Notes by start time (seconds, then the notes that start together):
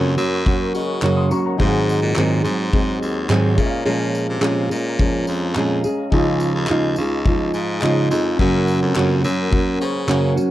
Already playing: F2 F#2 C#3 F#3 A#3 C#4 F#4 A#4 C#5 F#5 C#6
0.17 F#2 F#3 A#3 C#4 F#4, tambourine
0.46 F#3 A#3 C#4 F#4, kick
0.73 C#3 C#4 F#4 A#4 D#5, tambourine
1.02 F#2 C#3 F#3 A#3 C#4 F#4, clap
1.17 C6 D#6
1.31 F#3 A#3 C#4 F#4 A#5 C#6, tambourine
1.46 F#5 A#5
1.57 G#2 D#3 F#3 G#3 C4 D#4 G#4 C5 F5 C6, kick
1.61 D#5
1.68 F#5
1.89 tambourine
2.02 A#2
2.16 G#2 D#3 F#3 G#3 C4 G#4, clap
2.44 G#2 F#3 G#3 C4 G#4, tambourine
2.72 F#3 G#3 C4 G#4, kick
3.01 D#2, tambourine
3.29 G#2 D#3 F#3 G#3 C4 G#4, clap
3.56 A#2 G#3 C#4 G#4 A#4 C#5 F5 A#5, kick, tambourine
3.60 E5
3.67 F5
3.85 A#2 F3 G#3 C#4 G#4
4.15 tambourine
4.29 C3
4.41 A#2 F3 G#3 C#4 G#4, clap
4.70 A#2 G#3 C#4 G#4, tambourine
4.99 F3 G#3 C#4 G#4, kick
5.27 F2, tambourine
5.55 A#2 F3 G#3 C#4 G#4, clap
5.84 G#3 C#4 G#4, tambourine
6.10 C#2 C#3 F3 G#3 D#4 F4 G#4 C#5 D#5 G#5, kick
6.15 F5
6.40 tambourine
6.55 D#2
6.67 C#3 F3 G#3 F4, clap
6.71 D#4
6.96 C#2 F4, tambourine
7.00 G#3 D#4
7.26 F3 G#3 D#4 F4, kick
7.54 G#2, tambourine
7.81 C#3 F3 G#3 D#4 F4 G#4 C#5 D#5, clap
8.10 F2 G#3 D#4 F4, tambourine
8.37 F#2 C#3 F#3 A#3 C#4 F#4 A#4 F#5, kick
8.41 C#4 F#5
8.68 tambourine
8.82 F2
8.95 F#2 C#3 F#3 A#3 C#4 F#4, clap
9.24 F#2 F#3 A#3 C#4 F#4, tambourine
9.51 F#3 A#3 C#4 F#4, kick
9.80 C#3 C#4 F#4 A#4 C5, tambourine
10.08 F#2 C#3 F#3 A#3 C#4 F#4, clap
10.36 F#3 A#3 C#4 F#4, tambourine